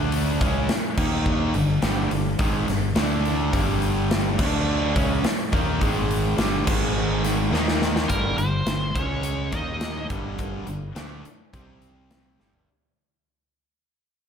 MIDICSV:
0, 0, Header, 1, 7, 480
1, 0, Start_track
1, 0, Key_signature, -2, "minor"
1, 0, Tempo, 571429
1, 1054, Time_signature, 4, 2, 24, 8
1, 11996, End_track
2, 0, Start_track
2, 0, Title_t, "Lead electric guitar"
2, 0, Program_c, 0, 29
2, 6798, Note_on_c, 0, 70, 80
2, 7023, Note_off_c, 0, 70, 0
2, 7036, Note_on_c, 0, 72, 96
2, 7516, Note_on_c, 0, 73, 99
2, 7534, Note_off_c, 0, 72, 0
2, 8000, Note_off_c, 0, 73, 0
2, 8004, Note_on_c, 0, 75, 89
2, 8451, Note_off_c, 0, 75, 0
2, 11996, End_track
3, 0, Start_track
3, 0, Title_t, "Distorted electric guitar"
3, 0, Program_c, 1, 30
3, 0, Note_on_c, 1, 50, 104
3, 0, Note_on_c, 1, 57, 84
3, 0, Note_on_c, 1, 62, 109
3, 330, Note_off_c, 1, 50, 0
3, 334, Note_off_c, 1, 57, 0
3, 335, Note_off_c, 1, 62, 0
3, 341, Note_on_c, 1, 49, 85
3, 345, Note_on_c, 1, 56, 102
3, 349, Note_on_c, 1, 61, 103
3, 571, Note_off_c, 1, 49, 0
3, 573, Note_off_c, 1, 56, 0
3, 575, Note_off_c, 1, 61, 0
3, 820, Note_on_c, 1, 51, 99
3, 825, Note_on_c, 1, 58, 98
3, 828, Note_on_c, 1, 63, 95
3, 1289, Note_off_c, 1, 51, 0
3, 1291, Note_off_c, 1, 58, 0
3, 1293, Note_off_c, 1, 63, 0
3, 1294, Note_on_c, 1, 43, 60
3, 1301, Note_on_c, 1, 50, 82
3, 1485, Note_off_c, 1, 43, 0
3, 1488, Note_off_c, 1, 50, 0
3, 1530, Note_on_c, 1, 43, 88
3, 1536, Note_on_c, 1, 50, 103
3, 1537, Note_on_c, 1, 55, 96
3, 1763, Note_off_c, 1, 43, 0
3, 1766, Note_off_c, 1, 50, 0
3, 1766, Note_off_c, 1, 55, 0
3, 1772, Note_on_c, 1, 43, 68
3, 1775, Note_on_c, 1, 50, 66
3, 1963, Note_off_c, 1, 43, 0
3, 1965, Note_off_c, 1, 50, 0
3, 2007, Note_on_c, 1, 44, 75
3, 2010, Note_on_c, 1, 51, 94
3, 2012, Note_on_c, 1, 56, 94
3, 2237, Note_off_c, 1, 44, 0
3, 2240, Note_on_c, 1, 43, 64
3, 2241, Note_off_c, 1, 51, 0
3, 2243, Note_off_c, 1, 56, 0
3, 2245, Note_on_c, 1, 50, 78
3, 2437, Note_off_c, 1, 43, 0
3, 2439, Note_off_c, 1, 50, 0
3, 2481, Note_on_c, 1, 50, 75
3, 2485, Note_on_c, 1, 57, 84
3, 2486, Note_on_c, 1, 62, 97
3, 2953, Note_off_c, 1, 50, 0
3, 2958, Note_on_c, 1, 43, 105
3, 2959, Note_off_c, 1, 57, 0
3, 2959, Note_off_c, 1, 62, 0
3, 2963, Note_on_c, 1, 50, 105
3, 2964, Note_on_c, 1, 55, 113
3, 3667, Note_off_c, 1, 50, 0
3, 3674, Note_off_c, 1, 43, 0
3, 3677, Note_off_c, 1, 55, 0
3, 3677, Note_on_c, 1, 50, 91
3, 3682, Note_on_c, 1, 57, 97
3, 3683, Note_on_c, 1, 62, 92
3, 4153, Note_off_c, 1, 50, 0
3, 4156, Note_off_c, 1, 57, 0
3, 4156, Note_off_c, 1, 62, 0
3, 4159, Note_on_c, 1, 49, 84
3, 4159, Note_on_c, 1, 56, 104
3, 4167, Note_on_c, 1, 61, 122
3, 4394, Note_off_c, 1, 49, 0
3, 4394, Note_off_c, 1, 56, 0
3, 4398, Note_off_c, 1, 61, 0
3, 4638, Note_on_c, 1, 51, 97
3, 4639, Note_on_c, 1, 58, 102
3, 4641, Note_on_c, 1, 63, 101
3, 4865, Note_off_c, 1, 51, 0
3, 4870, Note_on_c, 1, 44, 104
3, 4874, Note_off_c, 1, 58, 0
3, 4875, Note_off_c, 1, 63, 0
3, 4875, Note_on_c, 1, 51, 99
3, 4879, Note_on_c, 1, 56, 124
3, 5349, Note_off_c, 1, 44, 0
3, 5351, Note_off_c, 1, 51, 0
3, 5353, Note_off_c, 1, 56, 0
3, 5354, Note_on_c, 1, 43, 99
3, 5356, Note_on_c, 1, 50, 104
3, 5361, Note_on_c, 1, 55, 111
3, 5590, Note_off_c, 1, 43, 0
3, 5591, Note_off_c, 1, 50, 0
3, 5593, Note_on_c, 1, 44, 90
3, 5594, Note_off_c, 1, 55, 0
3, 5595, Note_on_c, 1, 51, 105
3, 5601, Note_on_c, 1, 56, 99
3, 6302, Note_off_c, 1, 51, 0
3, 6310, Note_off_c, 1, 44, 0
3, 6313, Note_on_c, 1, 51, 82
3, 6316, Note_off_c, 1, 56, 0
3, 6316, Note_on_c, 1, 58, 82
3, 6319, Note_on_c, 1, 63, 89
3, 6790, Note_off_c, 1, 51, 0
3, 6792, Note_off_c, 1, 58, 0
3, 6793, Note_off_c, 1, 63, 0
3, 6799, Note_on_c, 1, 43, 92
3, 6800, Note_on_c, 1, 50, 88
3, 6807, Note_on_c, 1, 55, 105
3, 7031, Note_off_c, 1, 43, 0
3, 7031, Note_off_c, 1, 50, 0
3, 7037, Note_off_c, 1, 55, 0
3, 7041, Note_on_c, 1, 43, 65
3, 7041, Note_on_c, 1, 50, 66
3, 7234, Note_off_c, 1, 43, 0
3, 7234, Note_off_c, 1, 50, 0
3, 7279, Note_on_c, 1, 43, 68
3, 7282, Note_on_c, 1, 50, 74
3, 7473, Note_off_c, 1, 43, 0
3, 7474, Note_off_c, 1, 50, 0
3, 7527, Note_on_c, 1, 49, 89
3, 7531, Note_on_c, 1, 56, 94
3, 7534, Note_on_c, 1, 61, 100
3, 7995, Note_off_c, 1, 49, 0
3, 7999, Note_on_c, 1, 51, 80
3, 8000, Note_off_c, 1, 56, 0
3, 8002, Note_off_c, 1, 61, 0
3, 8005, Note_on_c, 1, 58, 85
3, 8007, Note_on_c, 1, 63, 101
3, 8475, Note_off_c, 1, 51, 0
3, 8478, Note_off_c, 1, 58, 0
3, 8479, Note_off_c, 1, 63, 0
3, 8479, Note_on_c, 1, 43, 87
3, 8488, Note_on_c, 1, 50, 96
3, 8489, Note_on_c, 1, 55, 87
3, 8950, Note_off_c, 1, 43, 0
3, 8955, Note_off_c, 1, 50, 0
3, 8960, Note_on_c, 1, 43, 61
3, 8961, Note_off_c, 1, 55, 0
3, 8965, Note_on_c, 1, 50, 73
3, 9155, Note_off_c, 1, 43, 0
3, 9158, Note_off_c, 1, 50, 0
3, 9198, Note_on_c, 1, 50, 99
3, 9204, Note_on_c, 1, 62, 101
3, 9205, Note_on_c, 1, 57, 91
3, 9436, Note_off_c, 1, 50, 0
3, 9439, Note_off_c, 1, 57, 0
3, 9439, Note_off_c, 1, 62, 0
3, 9687, Note_on_c, 1, 48, 80
3, 9689, Note_on_c, 1, 55, 83
3, 9692, Note_on_c, 1, 60, 97
3, 10401, Note_off_c, 1, 55, 0
3, 10403, Note_off_c, 1, 48, 0
3, 10406, Note_off_c, 1, 60, 0
3, 10406, Note_on_c, 1, 50, 83
3, 10407, Note_on_c, 1, 43, 81
3, 10411, Note_on_c, 1, 55, 95
3, 10642, Note_off_c, 1, 43, 0
3, 10642, Note_off_c, 1, 50, 0
3, 10644, Note_off_c, 1, 55, 0
3, 11996, End_track
4, 0, Start_track
4, 0, Title_t, "Fingered electric bass"
4, 0, Program_c, 2, 33
4, 0, Note_on_c, 2, 38, 89
4, 307, Note_off_c, 2, 38, 0
4, 345, Note_on_c, 2, 37, 91
4, 564, Note_off_c, 2, 37, 0
4, 818, Note_on_c, 2, 39, 101
4, 1262, Note_off_c, 2, 39, 0
4, 1296, Note_on_c, 2, 31, 79
4, 1517, Note_off_c, 2, 31, 0
4, 1534, Note_on_c, 2, 31, 104
4, 1756, Note_off_c, 2, 31, 0
4, 1772, Note_on_c, 2, 31, 75
4, 1994, Note_off_c, 2, 31, 0
4, 2013, Note_on_c, 2, 32, 107
4, 2235, Note_off_c, 2, 32, 0
4, 2251, Note_on_c, 2, 31, 77
4, 2473, Note_off_c, 2, 31, 0
4, 2493, Note_on_c, 2, 38, 89
4, 2936, Note_off_c, 2, 38, 0
4, 2968, Note_on_c, 2, 31, 102
4, 3653, Note_off_c, 2, 31, 0
4, 3686, Note_on_c, 2, 38, 96
4, 4131, Note_off_c, 2, 38, 0
4, 4169, Note_on_c, 2, 37, 98
4, 4390, Note_off_c, 2, 37, 0
4, 4645, Note_on_c, 2, 39, 102
4, 4867, Note_off_c, 2, 39, 0
4, 4880, Note_on_c, 2, 32, 110
4, 5327, Note_off_c, 2, 32, 0
4, 5361, Note_on_c, 2, 31, 93
4, 5585, Note_off_c, 2, 31, 0
4, 5608, Note_on_c, 2, 32, 103
4, 6291, Note_off_c, 2, 32, 0
4, 6310, Note_on_c, 2, 39, 87
4, 6762, Note_off_c, 2, 39, 0
4, 6802, Note_on_c, 2, 31, 98
4, 7025, Note_off_c, 2, 31, 0
4, 7032, Note_on_c, 2, 31, 77
4, 7260, Note_off_c, 2, 31, 0
4, 7275, Note_on_c, 2, 31, 80
4, 7502, Note_off_c, 2, 31, 0
4, 7524, Note_on_c, 2, 37, 92
4, 7970, Note_off_c, 2, 37, 0
4, 8005, Note_on_c, 2, 39, 91
4, 8452, Note_off_c, 2, 39, 0
4, 8485, Note_on_c, 2, 31, 96
4, 8932, Note_off_c, 2, 31, 0
4, 8966, Note_on_c, 2, 31, 76
4, 9190, Note_off_c, 2, 31, 0
4, 9206, Note_on_c, 2, 38, 92
4, 9430, Note_off_c, 2, 38, 0
4, 9691, Note_on_c, 2, 36, 92
4, 10379, Note_off_c, 2, 36, 0
4, 10422, Note_on_c, 2, 31, 98
4, 10641, Note_off_c, 2, 31, 0
4, 11996, End_track
5, 0, Start_track
5, 0, Title_t, "Muted distorted electric guitar strokes"
5, 9448, Note_on_c, 9, 29, 52
5, 9532, Note_off_c, 9, 29, 0
5, 11996, End_track
6, 0, Start_track
6, 0, Title_t, "Muted overdriven electric guitar strokes"
6, 9459, Note_on_c, 9, 29, 54
6, 9543, Note_off_c, 9, 29, 0
6, 11996, End_track
7, 0, Start_track
7, 0, Title_t, "Drums"
7, 102, Note_on_c, 9, 46, 96
7, 186, Note_off_c, 9, 46, 0
7, 345, Note_on_c, 9, 36, 114
7, 348, Note_on_c, 9, 46, 62
7, 429, Note_off_c, 9, 36, 0
7, 432, Note_off_c, 9, 46, 0
7, 580, Note_on_c, 9, 46, 83
7, 582, Note_on_c, 9, 38, 107
7, 664, Note_off_c, 9, 46, 0
7, 666, Note_off_c, 9, 38, 0
7, 818, Note_on_c, 9, 49, 100
7, 820, Note_on_c, 9, 36, 102
7, 902, Note_off_c, 9, 49, 0
7, 904, Note_off_c, 9, 36, 0
7, 1058, Note_on_c, 9, 36, 101
7, 1142, Note_off_c, 9, 36, 0
7, 1294, Note_on_c, 9, 46, 50
7, 1378, Note_off_c, 9, 46, 0
7, 1531, Note_on_c, 9, 46, 68
7, 1533, Note_on_c, 9, 38, 103
7, 1615, Note_off_c, 9, 46, 0
7, 1617, Note_off_c, 9, 38, 0
7, 1774, Note_on_c, 9, 46, 64
7, 1858, Note_off_c, 9, 46, 0
7, 2007, Note_on_c, 9, 46, 89
7, 2010, Note_on_c, 9, 36, 112
7, 2091, Note_off_c, 9, 46, 0
7, 2094, Note_off_c, 9, 36, 0
7, 2252, Note_on_c, 9, 46, 54
7, 2254, Note_on_c, 9, 38, 35
7, 2336, Note_off_c, 9, 46, 0
7, 2338, Note_off_c, 9, 38, 0
7, 2484, Note_on_c, 9, 46, 82
7, 2487, Note_on_c, 9, 38, 103
7, 2568, Note_off_c, 9, 46, 0
7, 2571, Note_off_c, 9, 38, 0
7, 2734, Note_on_c, 9, 46, 53
7, 2818, Note_off_c, 9, 46, 0
7, 2968, Note_on_c, 9, 36, 89
7, 2968, Note_on_c, 9, 46, 81
7, 3052, Note_off_c, 9, 36, 0
7, 3052, Note_off_c, 9, 46, 0
7, 3207, Note_on_c, 9, 46, 50
7, 3291, Note_off_c, 9, 46, 0
7, 3453, Note_on_c, 9, 46, 77
7, 3455, Note_on_c, 9, 38, 113
7, 3537, Note_off_c, 9, 46, 0
7, 3539, Note_off_c, 9, 38, 0
7, 3685, Note_on_c, 9, 49, 97
7, 3688, Note_on_c, 9, 36, 113
7, 3769, Note_off_c, 9, 49, 0
7, 3772, Note_off_c, 9, 36, 0
7, 4166, Note_on_c, 9, 36, 117
7, 4168, Note_on_c, 9, 46, 68
7, 4250, Note_off_c, 9, 36, 0
7, 4252, Note_off_c, 9, 46, 0
7, 4405, Note_on_c, 9, 46, 86
7, 4407, Note_on_c, 9, 38, 99
7, 4489, Note_off_c, 9, 46, 0
7, 4491, Note_off_c, 9, 38, 0
7, 4643, Note_on_c, 9, 46, 52
7, 4645, Note_on_c, 9, 36, 103
7, 4727, Note_off_c, 9, 46, 0
7, 4729, Note_off_c, 9, 36, 0
7, 4884, Note_on_c, 9, 36, 84
7, 4884, Note_on_c, 9, 46, 74
7, 4968, Note_off_c, 9, 36, 0
7, 4968, Note_off_c, 9, 46, 0
7, 5129, Note_on_c, 9, 46, 54
7, 5213, Note_off_c, 9, 46, 0
7, 5362, Note_on_c, 9, 46, 79
7, 5365, Note_on_c, 9, 38, 117
7, 5446, Note_off_c, 9, 46, 0
7, 5449, Note_off_c, 9, 38, 0
7, 5603, Note_on_c, 9, 49, 105
7, 5605, Note_on_c, 9, 36, 109
7, 5687, Note_off_c, 9, 49, 0
7, 5689, Note_off_c, 9, 36, 0
7, 6085, Note_on_c, 9, 46, 60
7, 6087, Note_on_c, 9, 38, 36
7, 6169, Note_off_c, 9, 46, 0
7, 6171, Note_off_c, 9, 38, 0
7, 6330, Note_on_c, 9, 38, 66
7, 6414, Note_off_c, 9, 38, 0
7, 6450, Note_on_c, 9, 38, 77
7, 6534, Note_off_c, 9, 38, 0
7, 6567, Note_on_c, 9, 38, 86
7, 6651, Note_off_c, 9, 38, 0
7, 6686, Note_on_c, 9, 38, 89
7, 6770, Note_off_c, 9, 38, 0
7, 6799, Note_on_c, 9, 42, 83
7, 6803, Note_on_c, 9, 36, 86
7, 6883, Note_off_c, 9, 42, 0
7, 6887, Note_off_c, 9, 36, 0
7, 7040, Note_on_c, 9, 42, 52
7, 7124, Note_off_c, 9, 42, 0
7, 7279, Note_on_c, 9, 42, 78
7, 7281, Note_on_c, 9, 38, 110
7, 7363, Note_off_c, 9, 42, 0
7, 7365, Note_off_c, 9, 38, 0
7, 7522, Note_on_c, 9, 36, 111
7, 7523, Note_on_c, 9, 42, 62
7, 7606, Note_off_c, 9, 36, 0
7, 7607, Note_off_c, 9, 42, 0
7, 7755, Note_on_c, 9, 42, 94
7, 7839, Note_off_c, 9, 42, 0
7, 7999, Note_on_c, 9, 42, 69
7, 8002, Note_on_c, 9, 36, 98
7, 8083, Note_off_c, 9, 42, 0
7, 8086, Note_off_c, 9, 36, 0
7, 8239, Note_on_c, 9, 42, 78
7, 8241, Note_on_c, 9, 38, 101
7, 8323, Note_off_c, 9, 42, 0
7, 8325, Note_off_c, 9, 38, 0
7, 8483, Note_on_c, 9, 42, 55
7, 8486, Note_on_c, 9, 36, 98
7, 8567, Note_off_c, 9, 42, 0
7, 8570, Note_off_c, 9, 36, 0
7, 8724, Note_on_c, 9, 42, 68
7, 8728, Note_on_c, 9, 36, 88
7, 8808, Note_off_c, 9, 42, 0
7, 8812, Note_off_c, 9, 36, 0
7, 8962, Note_on_c, 9, 42, 56
7, 9046, Note_off_c, 9, 42, 0
7, 9206, Note_on_c, 9, 42, 74
7, 9209, Note_on_c, 9, 38, 107
7, 9290, Note_off_c, 9, 42, 0
7, 9293, Note_off_c, 9, 38, 0
7, 9451, Note_on_c, 9, 42, 61
7, 9535, Note_off_c, 9, 42, 0
7, 9690, Note_on_c, 9, 36, 106
7, 9690, Note_on_c, 9, 42, 73
7, 9774, Note_off_c, 9, 36, 0
7, 9774, Note_off_c, 9, 42, 0
7, 9926, Note_on_c, 9, 42, 58
7, 10010, Note_off_c, 9, 42, 0
7, 10170, Note_on_c, 9, 42, 74
7, 10172, Note_on_c, 9, 38, 101
7, 10254, Note_off_c, 9, 42, 0
7, 10256, Note_off_c, 9, 38, 0
7, 10413, Note_on_c, 9, 38, 52
7, 10497, Note_off_c, 9, 38, 0
7, 10529, Note_on_c, 9, 43, 70
7, 10613, Note_off_c, 9, 43, 0
7, 11996, End_track
0, 0, End_of_file